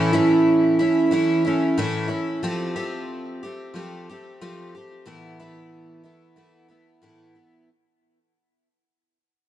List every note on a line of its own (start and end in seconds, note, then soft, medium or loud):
0.00 0.14 A2 medium
0.00 0.13 E3 medium
0.00 0.13 A3 medium
0.00 0.12 C#4 medium
0.00 0.12 E4 medium
0.13 0.80 A2 medium
0.13 0.80 E3 medium
0.13 0.81 A3 medium
0.13 0.79 C#4 medium
0.13 0.78 E4 medium
0.79 1.11 A3 soft
0.79 1.12 C#4 medium
0.79 1.12 E4 medium
1.11 1.45 E3 medium
1.11 1.45 A3 medium
1.11 1.46 C#4 medium
1.11 1.43 E4 medium
1.45 1.78 A3 soft
1.45 1.77 C#4 soft
1.45 1.78 E4 soft
1.78 2.11 A2 medium
1.78 2.11 E3 medium
1.78 2.09 A3 medium
1.78 2.08 C#4 medium
1.78 2.07 E4 medium
2.08 2.42 A3 soft
2.08 2.43 C#4 soft
2.08 2.42 E4 soft
2.43 2.76 F3 medium
2.43 2.75 A3 medium
2.43 2.75 C4 medium
2.43 2.75 G4 medium
2.76 3.42 F3 medium
2.76 3.45 A3 medium
2.76 3.42 C4 medium
2.76 3.42 G4 medium
3.43 3.74 A3 soft
3.43 3.75 C4 soft
3.43 3.75 G4 medium
3.74 4.07 F3 medium
3.74 4.08 A3 medium
3.74 4.08 C4 medium
3.74 4.08 G4 medium
4.10 4.40 A3 soft
4.10 4.41 C4 soft
4.10 4.41 G4 medium
4.41 4.74 F3 medium
4.41 4.74 A3 medium
4.41 4.74 C4 medium
4.41 4.74 G4 medium
4.75 5.06 A3 soft
4.75 5.07 C4 soft
4.75 5.07 G4 medium
5.05 5.39 A2 medium
5.05 5.39 E3 medium
5.05 5.39 A3 medium
5.05 5.38 B3 medium
5.05 5.38 E4 medium
5.40 6.06 A2 medium
5.40 6.06 E3 medium
5.40 6.04 A3 medium
5.40 6.04 B3 medium
5.40 6.02 E4 medium
6.04 6.36 A3 soft
6.04 6.36 B3 soft
6.04 6.37 E4 soft
6.36 6.70 E3 soft
6.36 6.70 A3 medium
6.36 6.68 B3 medium
6.36 6.67 E4 medium
6.68 7.02 A3 soft
6.68 7.02 B3 soft
6.68 7.02 E4 soft
7.02 7.35 A2 medium
7.02 7.36 E3 medium
7.02 7.35 A3 medium
7.02 7.34 B3 medium
7.02 7.34 E4 medium
7.35 7.69 A3 soft
7.35 7.69 B3 soft
7.35 7.68 E4 soft